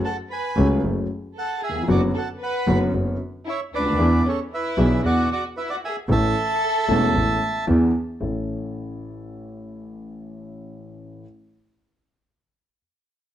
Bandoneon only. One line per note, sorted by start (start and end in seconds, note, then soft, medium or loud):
0.05 0.17 F#5 medium
0.05 0.16 A5 medium
0.31 0.68 G#5 medium
0.31 0.67 B5 medium
1.38 1.61 F#5 medium
1.38 1.61 A5 medium
1.63 1.87 E5 medium
1.63 1.87 G#5 medium
1.90 2.02 D5 medium
1.90 2.01 F#5 medium
2.18 2.29 F#5 medium
2.18 2.29 A5 medium
2.43 2.79 F#5 medium
2.43 2.79 B5 medium
3.49 3.61 C#5 medium
3.49 3.60 E5 medium
3.75 4.23 B4 medium
3.75 4.28 D5 medium
4.29 4.39 A4 medium
4.29 4.40 C#5 medium
4.54 5.02 B4 medium
4.54 5.02 E5 medium
5.06 5.29 D5 medium
5.06 5.29 F#5 loud
5.33 5.44 D5 medium
5.33 5.44 F#5 medium
5.57 5.69 B4 medium
5.57 5.71 E5 medium
5.70 5.76 D5 medium
5.70 5.76 F#5 medium
5.85 5.96 E5 medium
5.85 5.96 G#5 medium
6.12 7.65 E5 medium
6.12 7.65 A5 loud